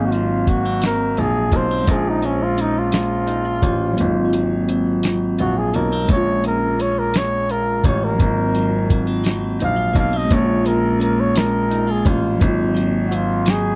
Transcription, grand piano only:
0.00 1.18 G#1 medium
1.18 1.50 A#1 medium
1.52 1.84 B1 medium
1.88 3.59 A#1 loud
3.63 3.95 A1 medium
4.00 5.40 G#1 medium
5.40 5.71 A#1 medium
5.75 6.06 B1 medium
6.09 7.81 A#1 medium
7.85 8.16 A1 medium
8.20 9.56 G#1 loud
9.62 9.92 A#1 medium
9.95 10.27 B1 medium
10.31 12.02 A#1 loud
12.06 12.37 A1 medium
12.42 13.75 G#1 loud

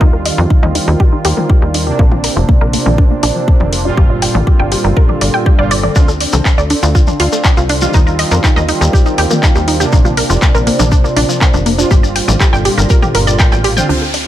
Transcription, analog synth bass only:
0.01 0.31 D#2 medium
0.38 0.46 F2 loud
0.63 0.79 D#2 loud
0.88 0.96 D#2 medium
1.25 1.33 D#2 medium
1.62 1.92 D#2 medium
1.99 2.30 A#1 loud
2.36 2.45 F1 medium
2.61 2.78 A#1 medium
2.86 3.16 A#1 medium
3.23 3.31 A#1 medium
3.60 3.91 F1 medium
3.97 4.28 G1 medium
4.35 4.43 A1 medium
4.59 4.76 G1 loud
4.84 4.92 G1 medium
5.21 5.30 G1 medium
5.59 5.89 G1 medium
5.96 6.26 D2 loud
6.33 6.41 C2 medium
6.58 6.74 D2 medium
6.83 7.13 D2 loud
7.20 7.28 D2 medium
7.57 7.87 C2 loud
7.94 8.25 D#2 medium
8.31 8.40 F2 loud
8.56 8.73 D#2 loud
8.81 8.89 D#2 medium
9.18 9.26 D#2 medium
9.55 9.86 D#2 medium
9.93 10.23 A#1 loud
10.30 10.38 F1 medium
10.55 10.71 A#1 medium
10.79 11.10 A#1 loud
11.16 11.25 A#1 medium
11.54 11.84 F1 loud
11.91 12.21 G1 loud
12.28 12.36 A1 loud
12.53 12.69 G1 loud
12.78 12.86 G1 medium
13.15 13.45 G1 medium
13.52 13.83 A1 loud
13.89 14.27 D2 medium

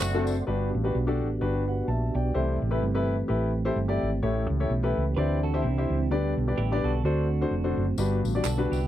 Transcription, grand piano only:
0.14 0.33 A3 medium
0.14 0.33 C4 medium
0.14 0.33 D4 medium
0.14 0.33 F#4 medium
0.14 0.33 A4 loud
0.47 1.17 G2 medium
0.47 0.68 D4 medium
0.47 0.68 F#4 medium
0.47 0.68 G4 medium
0.47 0.68 B4 medium
0.84 0.95 D4 medium
0.84 0.95 F#4 medium
0.84 0.95 G4 medium
0.84 0.95 B4 medium
1.07 1.26 D4 medium
1.07 1.27 F#4 medium
1.07 1.27 G4 medium
1.07 1.27 A4 medium
1.41 1.62 D4 medium
1.41 1.62 F#4 medium
1.41 1.62 G4 medium
1.41 1.62 B4 medium
1.68 1.87 B4 medium
1.68 1.87 F#5 medium
1.88 2.14 E5 medium
1.88 2.13 A5 medium
2.14 2.60 D5 medium
2.14 2.59 G5 medium
2.34 3.05 C3 medium
2.34 2.55 E4 medium
2.34 2.56 G4 medium
2.34 2.56 A4 medium
2.34 2.56 C5 medium
2.71 2.82 E4 medium
2.71 2.82 G4 medium
2.71 2.82 A4 medium
2.71 2.82 B4 medium
2.95 3.14 E4 medium
2.95 3.14 G4 medium
2.95 3.14 A4 medium
2.95 3.14 B4 loud
3.28 3.49 E4 medium
3.28 3.49 G4 medium
3.28 3.50 A4 medium
3.28 3.50 B4 medium
3.65 3.76 E4 medium
3.65 3.76 G4 medium
3.65 3.76 A4 medium
3.65 3.76 C5 medium
3.88 4.08 E4 medium
3.88 4.08 G4 medium
3.88 4.08 A4 medium
3.88 4.08 D5 medium
4.22 4.93 A2 medium
4.22 4.43 E4 medium
4.22 4.43 G4 medium
4.22 4.44 A4 medium
4.22 4.43 C#5 medium
4.60 4.70 E4 medium
4.60 4.70 G4 medium
4.60 4.71 A4 medium
4.60 4.71 C#5 medium
4.83 5.02 E4 medium
4.83 5.02 G4 medium
4.83 5.02 A4 medium
4.83 5.02 B4 medium
5.18 5.87 D3 medium
5.18 5.38 E4 medium
5.18 5.38 G4 medium
5.18 5.38 C5 medium
5.18 5.38 D5 medium
5.54 5.64 E4 medium
5.54 5.64 G4 medium
5.54 5.64 C5 medium
5.54 5.64 E5 medium
5.77 5.96 E4 medium
5.77 5.96 G4 medium
5.77 5.96 C5 medium
5.77 5.96 E5 medium
6.11 6.80 D3 medium
6.11 6.31 D4 medium
6.11 6.32 G4 medium
6.11 6.31 B4 medium
6.11 6.32 D5 medium
6.48 6.58 D4 medium
6.48 6.58 G4 medium
6.48 6.58 B4 medium
6.48 6.58 D5 medium
6.72 6.90 D4 medium
6.72 6.90 G4 medium
6.72 6.90 B4 medium
6.72 6.90 D5 medium
7.05 7.74 D3 medium
7.05 7.25 D4 medium
7.05 7.25 F#4 medium
7.05 7.25 A4 medium
7.05 7.25 C5 medium
7.41 7.52 D4 medium
7.41 7.52 F#4 medium
7.41 7.52 A4 medium
7.41 7.52 C5 medium
7.64 7.83 D4 medium
7.64 7.83 F#4 medium
7.64 7.83 A4 medium
7.64 7.83 C5 medium
7.98 8.68 G2 medium
7.98 8.19 D4 medium
7.98 8.19 F#4 medium
7.98 8.19 G4 medium
7.98 8.19 B4 medium
8.35 8.46 D4 medium
8.35 8.46 F#4 medium
8.35 8.45 G4 medium
8.35 8.46 D5 medium
8.58 8.77 D4 medium
8.58 8.77 F#4 medium
8.58 8.77 G4 medium
8.58 8.77 B4 medium

